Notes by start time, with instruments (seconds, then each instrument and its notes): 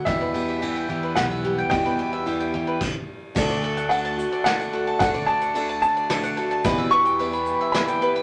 0.05 steel-string acoustic guitar E2 B2 E3 G3 B3 E4, upright bass E2, mandolin G4, upright piano E5, kick, ride
0.21 mandolin B4
0.34 steel-string acoustic guitar B3, mandolin G4, ride
0.48 mandolin E5
0.61 steel-string acoustic guitar E3 G3 B3 E4, mandolin G4, ride
0.76 mandolin G5
0.89 steel-string acoustic guitar E3 G3 B3 E4, mandolin G4
1.03 mandolin B4
1.16 upright bass B1, steel-string acoustic guitar G3 B3 E4, mandolin G4, upright piano F#5, snare, ride
1.31 mandolin E5
1.43 steel-string acoustic guitar E3 G3 B3 E4, mandolin G4
1.58 mandolin G5
1.70 steel-string acoustic guitar E2 B2 E3 G3 B3 E4, upright bass E2, mandolin G4, upright piano G5, kick, ride
1.86 mandolin B4
1.99 steel-string acoustic guitar B3, mandolin G4
2.13 mandolin E5
2.26 steel-string acoustic guitar E3 G3 B3 E4, mandolin G4, ride
2.40 mandolin G5
2.54 steel-string acoustic guitar E3 G3 B3 E4, mandolin G4
2.67 mandolin B4
2.81 kick, crash
3.35 upright piano D2 D3 A3 D4 F#4 D5, upright bass D2, steel-string acoustic guitar D3 A3 D4 F#4, harmonium D3 A3 F#4, mandolin A4, kick, crash, shaker
3.50 mandolin D5
3.64 mandolin A4
3.77 mandolin F#5, shaker
3.89 steel-string acoustic guitar D3 A3 D4 F#4, upright piano A3 D4 F#4 D5 F#5, mandolin A4, ride
4.05 mandolin A5, shaker
4.17 steel-string acoustic guitar A3 D4 F#4, shaker
4.32 mandolin D5, shaker
4.44 steel-string acoustic guitar D3 A3 D4 F#4, upright piano A3 D4 F#4 D5 F#5, mandolin A4, snare, ride
4.60 mandolin F#5, shaker
4.73 steel-string acoustic guitar A3 D4 F#4, mandolin A4
4.87 mandolin A5
4.99 upright bass D2, upright piano D2 D3 A3 D4 F#4 D5 F#5, steel-string acoustic guitar D3 A3 D4 F#4, mandolin A4, kick, ride, shaker
5.14 mandolin D5
5.26 mandolin A4, upright piano A5
5.42 mandolin F#5, shaker
5.54 steel-string acoustic guitar D3 A3 D4 F#4, upright piano A3 D4 F#4 D5, mandolin A4, ride
5.69 mandolin A5, shaker
5.82 upright piano A5, shaker
5.96 mandolin D5, shaker
6.09 steel-string acoustic guitar D3 A3 D4 F#4, upright piano A3 D4 F#4 D5, mandolin A4, snare, ride
6.23 mandolin F#5, shaker
6.37 steel-string acoustic guitar A3 D4 F#4, mandolin A4
6.51 mandolin A5
6.62 steel-string acoustic guitar E2 B2 E3 G3 B3, upright piano E2 E3 B3 E4 G4 E5, upright bass E2, harmonium E3 B3 G4, mandolin B4, kick, ride, shaker
6.67 steel-string acoustic guitar G4
6.78 mandolin E5
6.91 mandolin B4, upright piano C#6
7.05 mandolin G5, shaker
7.19 steel-string acoustic guitar E3 G3 B3 G4, upright piano B3 E4 G4 E5, mandolin B4, ride
7.33 mandolin B5, shaker
7.46 shaker
7.61 mandolin E5
7.72 steel-string acoustic guitar E3 G3 B3, upright piano B3 E4 G4 E5 B5, mandolin B4, snare, ride
7.77 steel-string acoustic guitar G4
7.88 mandolin G5, shaker
8.01 steel-string acoustic guitar E3 G3 B3 G4, mandolin B4
8.16 mandolin B5